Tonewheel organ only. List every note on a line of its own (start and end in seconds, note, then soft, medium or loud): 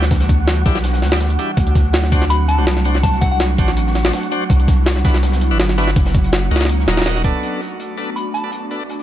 0.66 0.78 D4 medium
0.66 0.78 E4 medium
0.66 0.78 G4 medium
1.12 1.19 D4 medium
1.12 1.19 E4 medium
1.12 1.19 G4 medium
1.39 1.52 D4 loud
1.39 1.52 E4 medium
1.39 1.51 G4 loud
2.12 2.25 D4 medium
2.12 2.25 F#4 medium
2.12 2.25 C5 medium
2.58 2.66 D4 medium
2.58 2.66 F#4 medium
2.58 2.66 C5 medium
2.85 2.98 D4 loud
2.85 2.98 F#4 medium
2.85 2.98 C5 loud
3.59 3.71 D4 medium
3.59 3.71 F#4 medium
3.59 3.71 C5 medium
4.05 4.12 D4 medium
4.05 4.12 F#4 medium
4.05 4.12 C5 medium
4.32 4.44 D4 medium
4.32 4.44 F#4 medium
4.32 4.44 C5 loud
5.05 5.17 D4 medium
5.05 5.17 E4 medium
5.05 5.17 F#4 medium
5.05 5.17 B4 medium
5.51 5.58 D4 medium
5.51 5.58 E4 medium
5.51 5.58 F#4 medium
5.51 5.58 B4 medium
5.78 5.90 D4 loud
5.78 5.90 E4 medium
5.78 5.90 F#4 medium
5.78 5.90 B4 loud
6.51 6.64 D#4 medium
6.51 6.64 F#4 medium
6.51 6.64 A#4 medium
6.88 7.22 D#4 medium
6.88 7.22 F#4 medium
6.88 7.22 A#4 medium
7.24 7.61 B3 loud
7.24 7.61 D4 medium
7.24 7.61 A4 loud
7.97 8.10 D4 medium
7.97 8.10 A4 medium
7.97 8.10 B4 medium
8.44 8.51 D4 medium
8.44 8.51 A4 medium
8.44 8.51 B4 medium
8.71 8.83 D4 medium
8.71 8.83 A4 medium
8.71 8.83 B4 loud